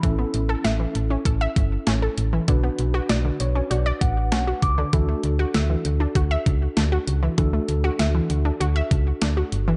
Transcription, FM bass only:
\new Staff \with { instrumentName = "FM bass" } { \clef bass \time 4/4 \key d \major \tempo 4 = 98 a,,8 a,,8 a,,8 a,,8 a,,8 g,,8 a,,8 a,,8 | b,,8 b,,8 b,,8 b,,8 b,,8 a,,8 b,,8 cis,8 | d,8 d,8 d,8 d,8 d,8 cis,8 d,8 cis,8 | d,8 d,8 d,8 d,8 d,8 cis,8 d,8 g,,8 | }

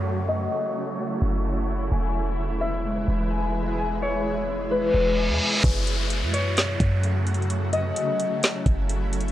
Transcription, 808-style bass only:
\new Staff \with { instrumentName = "808-style bass" } { \clef bass \time 4/4 \key fis \dorian \tempo 4 = 129 fis,4 r4. fis,,4. | e,,2~ e,,8 e,,4.~ | e,,2~ e,,8 e,,8. e,16 r8 | fis,,4~ fis,,16 fis,4~ fis,16 fis,4.~ |
fis,4 r4. fis,,4. | }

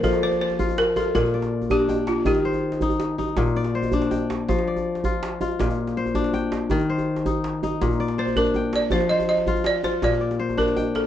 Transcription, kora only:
<<
  \new Staff \with { instrumentName = "Kora" } { \time 12/8 \key bes \major \tempo 4. = 108 r8 d''4. r8 f'4 d''4. g''4~ | g''8 c''4. r8 ees'4 d''8 c''4 g''4~ | g''8 d''4. r8 f'4 r8 c''4 g''4~ | g''8 c''4. r8 ees'4 d''8 c''4 g''4~ |
g''8 c''4. r8 f'4 d''8 c''4 g''4 | }
  \new Staff \with { instrumentName = "Kora" } { \time 12/8 \key bes \major f4 r8 f'4 r8 bes,4 r8 d'4 r8 | ees4 r8 ees'4 r8 bes,4 r8 d'4 r8 | f4 r8 f'4 r8 bes,4 r8 d'4 r8 | ees4 r8 ees'4 r8 bes,4 r8 d'4 r8 |
f4 r8 f'4 r8 bes,4 r8 d'4 r8 | }
>>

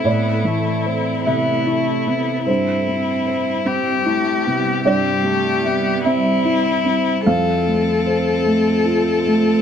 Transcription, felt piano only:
\new Staff \with { instrumentName = "Felt piano" } { \time 6/8 \key c \major \tempo 4. = 50 << { d''4. e''4. | c''2. | d''4. e''4. | f''2. | } \\ { <a, c'>8 e8 c''8 c8 e'8 c8 | g,8 c'8 c''8 c'8 e'8 c8 | g,8 g8 e''8 c'8 e'8 c'8 | f,8 a8 c''8 a8 f'8 a8 | } >> }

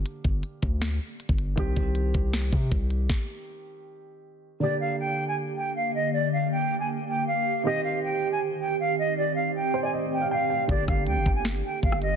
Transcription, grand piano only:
<<
  \new Staff \with { instrumentName = "Grand piano" } { \time 4/4 \key g \minor \tempo 4 = 158 r1 | r1 | r1 | r1 |
r1 | r1 | r4. c''16 d''16 ees''8. f''16 g''8 g''8 | r1 | }
  \new Staff \with { instrumentName = "Grand piano" } { \time 4/4 \key g \minor <d bes g'>1 | <ees c' g'>1~ | <ees c' g'>1 | <d bes g'>1~ |
<d bes g'>1 | <ees c' g'>1~ | <ees c' g'>1 | <d bes g'>1 | }
>>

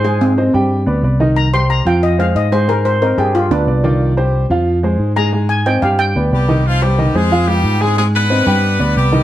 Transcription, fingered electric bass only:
\new Staff \with { instrumentName = "Fingered electric bass" } { \clef bass \time 4/4 \key c \minor \tempo 4 = 182 aes,4. g,4 d,8 c,4~ | c,4. f,4. aes,4~ | aes,4. g,4 d,8 c,4~ | c,4. f,4. aes,4~ |
aes,4. g,4 d,8 c,4~ | c,4. f,4. aes,4~ | aes,4. g,4 d,8 c,4 | }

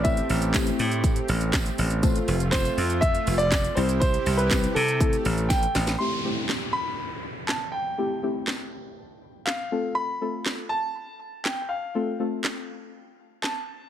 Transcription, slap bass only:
\new Staff \with { instrumentName = "Slap bass" } { \clef bass \time 4/4 \key a \minor \tempo 4 = 121 a,,8 a,,4 a,4 a,,4 a,,8~ | a,,8 f,,4 f,4 f,,4 c,8~ | c,8 c,4 c4 a,,4 a,,8 | r1 |
r1 | r1 | r1 | }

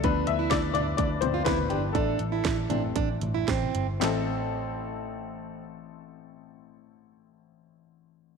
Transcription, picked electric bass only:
\new Staff \with { instrumentName = "Picked electric bass" } { \clef bass \time 4/4 \key a \minor \tempo 4 = 109 d,8 d,8 d,8 d,8 d,8 d,8 d,8 g,,8 | a,,8 a,,8 a,,8 a,,8 a,,8 a,,8 a,,8 g,,8 | a,,1~ | a,,1 | }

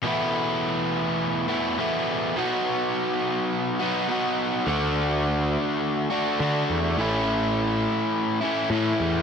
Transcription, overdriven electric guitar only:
\new Staff \with { instrumentName = "Overdriven electric guitar" } { \time 4/4 \key e \mixolydian \tempo 4 = 104 <e, b, e a b e'>2~ <e, b, e a b e'>8 <e, b, e a b e'>8 <e, b, e a b e'>4 | <b, fis b dis' fis'>2~ <b, fis b dis' fis'>8 <b, fis b dis' fis'>8 <b, fis b dis' fis'>4 | <d a d' fis'>2~ <d a d' fis'>8 <d a d' fis'>8 <d a d' fis'>4 | <a, e a cis' e'>2~ <a, e a cis' e'>8 <a, e a cis' e'>8 <a, e a cis' e'>4 | }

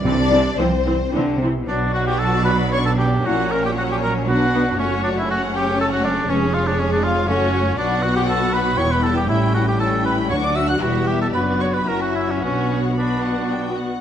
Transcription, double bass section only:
\new Staff \with { instrumentName = "Double bass section" } { \clef bass \time 3/4 \key c \major \tempo 4 = 116 c,4 c,4 c,4 | \key b \minor b,,2. | ais,,2 b,,4 | fis,,2. |
eis,,2 fis,,4 | b,,2 e,,4 | a,,2 d,4 | e,,4 fis,,4 fis,,4 |
b,,2~ b,,8 r8 | }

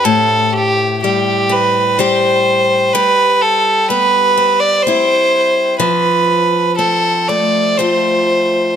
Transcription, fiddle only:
\new Staff \with { instrumentName = "Fiddle" } { \time 3/4 \key f \lydian \tempo 4 = 62 a'8 g'8 g'8 b'8 c''4 | b'8 a'8 b'8. d''16 c''4 | b'4 a'8 d''8 c''4 | }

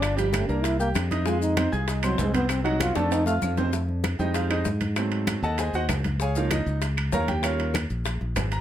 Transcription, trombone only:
\new Staff \with { instrumentName = "Trombone" } { \time 4/4 \key f \phrygian \tempo 4 = 194 d'8 f8 a8 d'8 e'8 bes8 r4 | f'8 ees'4 r4 ges8 aes8 ces'8 | c'8 ees'8 f'8 d'8 ees'8 a8 r4 | \key f \minor r1 |
r1 | r1 | r1 | }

